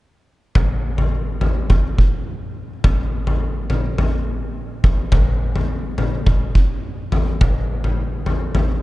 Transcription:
0, 0, Header, 1, 2, 480
1, 0, Start_track
1, 0, Tempo, 571429
1, 466, Time_signature, 4, 2, 24, 8
1, 7411, End_track
2, 0, Start_track
2, 0, Title_t, "Drums"
2, 464, Note_on_c, 9, 43, 75
2, 467, Note_on_c, 9, 36, 68
2, 548, Note_off_c, 9, 43, 0
2, 551, Note_off_c, 9, 36, 0
2, 824, Note_on_c, 9, 43, 54
2, 908, Note_off_c, 9, 43, 0
2, 1186, Note_on_c, 9, 43, 52
2, 1270, Note_off_c, 9, 43, 0
2, 1426, Note_on_c, 9, 43, 55
2, 1429, Note_on_c, 9, 36, 64
2, 1510, Note_off_c, 9, 43, 0
2, 1513, Note_off_c, 9, 36, 0
2, 1667, Note_on_c, 9, 36, 68
2, 1751, Note_off_c, 9, 36, 0
2, 2387, Note_on_c, 9, 43, 76
2, 2389, Note_on_c, 9, 36, 76
2, 2471, Note_off_c, 9, 43, 0
2, 2473, Note_off_c, 9, 36, 0
2, 2747, Note_on_c, 9, 43, 53
2, 2831, Note_off_c, 9, 43, 0
2, 3106, Note_on_c, 9, 43, 53
2, 3190, Note_off_c, 9, 43, 0
2, 3347, Note_on_c, 9, 43, 60
2, 3431, Note_off_c, 9, 43, 0
2, 4064, Note_on_c, 9, 43, 58
2, 4065, Note_on_c, 9, 36, 77
2, 4148, Note_off_c, 9, 43, 0
2, 4149, Note_off_c, 9, 36, 0
2, 4300, Note_on_c, 9, 43, 81
2, 4304, Note_on_c, 9, 36, 73
2, 4384, Note_off_c, 9, 43, 0
2, 4388, Note_off_c, 9, 36, 0
2, 4667, Note_on_c, 9, 43, 53
2, 4751, Note_off_c, 9, 43, 0
2, 5023, Note_on_c, 9, 43, 51
2, 5107, Note_off_c, 9, 43, 0
2, 5262, Note_on_c, 9, 43, 58
2, 5264, Note_on_c, 9, 36, 66
2, 5346, Note_off_c, 9, 43, 0
2, 5348, Note_off_c, 9, 36, 0
2, 5504, Note_on_c, 9, 36, 75
2, 5588, Note_off_c, 9, 36, 0
2, 5982, Note_on_c, 9, 43, 58
2, 6066, Note_off_c, 9, 43, 0
2, 6224, Note_on_c, 9, 43, 77
2, 6226, Note_on_c, 9, 36, 77
2, 6308, Note_off_c, 9, 43, 0
2, 6310, Note_off_c, 9, 36, 0
2, 6587, Note_on_c, 9, 43, 51
2, 6671, Note_off_c, 9, 43, 0
2, 6940, Note_on_c, 9, 43, 50
2, 7024, Note_off_c, 9, 43, 0
2, 7179, Note_on_c, 9, 43, 62
2, 7263, Note_off_c, 9, 43, 0
2, 7411, End_track
0, 0, End_of_file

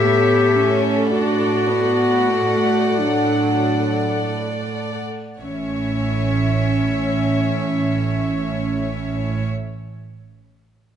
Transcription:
0, 0, Header, 1, 7, 480
1, 0, Start_track
1, 0, Key_signature, 3, "major"
1, 0, Tempo, 1111111
1, 476, Time_signature, 6, 3, 24, 8
1, 476, Tempo, 1212121
1, 956, Tempo, 1425178
1, 1436, Tempo, 1671309
1, 1916, Tempo, 1612903
1, 3568, End_track
2, 0, Start_track
2, 0, Title_t, "Violin section"
2, 0, Program_c, 0, 48
2, 0, Note_on_c, 0, 76, 52
2, 461, Note_off_c, 0, 76, 0
2, 487, Note_on_c, 0, 78, 56
2, 1823, Note_off_c, 0, 78, 0
2, 1920, Note_on_c, 0, 76, 38
2, 3118, Note_off_c, 0, 76, 0
2, 3568, End_track
3, 0, Start_track
3, 0, Title_t, "Violin section"
3, 0, Program_c, 1, 48
3, 0, Note_on_c, 1, 69, 46
3, 0, Note_on_c, 1, 73, 50
3, 459, Note_off_c, 1, 73, 0
3, 480, Note_on_c, 1, 74, 46
3, 1806, Note_off_c, 1, 69, 0
3, 1809, Note_off_c, 1, 74, 0
3, 1918, Note_on_c, 1, 73, 33
3, 3115, Note_off_c, 1, 73, 0
3, 3568, End_track
4, 0, Start_track
4, 0, Title_t, "Clarinet"
4, 0, Program_c, 2, 71
4, 0, Note_on_c, 2, 67, 78
4, 401, Note_off_c, 2, 67, 0
4, 474, Note_on_c, 2, 66, 69
4, 1185, Note_on_c, 2, 62, 65
4, 1190, Note_off_c, 2, 66, 0
4, 1674, Note_off_c, 2, 62, 0
4, 1916, Note_on_c, 2, 61, 41
4, 3114, Note_off_c, 2, 61, 0
4, 3568, End_track
5, 0, Start_track
5, 0, Title_t, "Viola section"
5, 0, Program_c, 3, 48
5, 3, Note_on_c, 3, 59, 49
5, 236, Note_off_c, 3, 59, 0
5, 238, Note_on_c, 3, 61, 52
5, 479, Note_off_c, 3, 61, 0
5, 479, Note_on_c, 3, 62, 58
5, 706, Note_off_c, 3, 62, 0
5, 710, Note_on_c, 3, 59, 54
5, 957, Note_off_c, 3, 59, 0
5, 957, Note_on_c, 3, 57, 44
5, 1185, Note_off_c, 3, 57, 0
5, 1188, Note_on_c, 3, 54, 38
5, 1553, Note_off_c, 3, 54, 0
5, 1917, Note_on_c, 3, 61, 32
5, 3114, Note_off_c, 3, 61, 0
5, 3568, End_track
6, 0, Start_track
6, 0, Title_t, "Cello section"
6, 0, Program_c, 4, 48
6, 0, Note_on_c, 4, 45, 46
6, 1807, Note_off_c, 4, 45, 0
6, 1917, Note_on_c, 4, 45, 31
6, 3114, Note_off_c, 4, 45, 0
6, 3568, End_track
7, 0, Start_track
7, 0, Title_t, "Double bass section"
7, 0, Program_c, 5, 48
7, 1916, Note_on_c, 5, 33, 34
7, 3113, Note_off_c, 5, 33, 0
7, 3568, End_track
0, 0, End_of_file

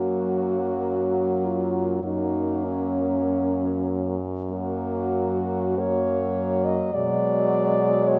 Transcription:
0, 0, Header, 1, 5, 480
1, 0, Start_track
1, 0, Key_signature, 6, "major"
1, 0, Tempo, 1200000
1, 813, Time_signature, 4, 2, 24, 8
1, 1285, Tempo, 1284797
1, 2245, Tempo, 1145038
1, 3256, End_track
2, 0, Start_track
2, 0, Title_t, "French horn"
2, 0, Program_c, 0, 60
2, 0, Note_on_c, 0, 66, 50
2, 577, Note_on_c, 0, 65, 40
2, 583, Note_off_c, 0, 66, 0
2, 811, Note_off_c, 0, 65, 0
2, 813, Note_on_c, 0, 63, 46
2, 1057, Note_on_c, 0, 61, 48
2, 1063, Note_off_c, 0, 63, 0
2, 1660, Note_off_c, 0, 61, 0
2, 1772, Note_on_c, 0, 66, 54
2, 2251, Note_on_c, 0, 73, 59
2, 2257, Note_off_c, 0, 66, 0
2, 2609, Note_on_c, 0, 75, 60
2, 2615, Note_off_c, 0, 73, 0
2, 2728, Note_on_c, 0, 74, 63
2, 2735, Note_off_c, 0, 75, 0
2, 3207, Note_on_c, 0, 73, 70
2, 3214, Note_off_c, 0, 74, 0
2, 3256, Note_off_c, 0, 73, 0
2, 3256, End_track
3, 0, Start_track
3, 0, Title_t, "French horn"
3, 0, Program_c, 1, 60
3, 0, Note_on_c, 1, 58, 32
3, 797, Note_off_c, 1, 58, 0
3, 816, Note_on_c, 1, 58, 35
3, 1642, Note_off_c, 1, 58, 0
3, 1767, Note_on_c, 1, 58, 42
3, 2229, Note_off_c, 1, 58, 0
3, 2244, Note_on_c, 1, 58, 44
3, 2718, Note_off_c, 1, 58, 0
3, 2732, Note_on_c, 1, 56, 48
3, 3256, Note_off_c, 1, 56, 0
3, 3256, End_track
4, 0, Start_track
4, 0, Title_t, "French horn"
4, 0, Program_c, 2, 60
4, 0, Note_on_c, 2, 54, 34
4, 794, Note_off_c, 2, 54, 0
4, 812, Note_on_c, 2, 54, 38
4, 1640, Note_off_c, 2, 54, 0
4, 1768, Note_on_c, 2, 54, 40
4, 2229, Note_off_c, 2, 54, 0
4, 2242, Note_on_c, 2, 54, 44
4, 2716, Note_off_c, 2, 54, 0
4, 2730, Note_on_c, 2, 54, 46
4, 3256, Note_off_c, 2, 54, 0
4, 3256, End_track
5, 0, Start_track
5, 0, Title_t, "French horn"
5, 0, Program_c, 3, 60
5, 0, Note_on_c, 3, 42, 33
5, 794, Note_off_c, 3, 42, 0
5, 812, Note_on_c, 3, 42, 36
5, 2659, Note_off_c, 3, 42, 0
5, 2730, Note_on_c, 3, 47, 46
5, 3256, Note_off_c, 3, 47, 0
5, 3256, End_track
0, 0, End_of_file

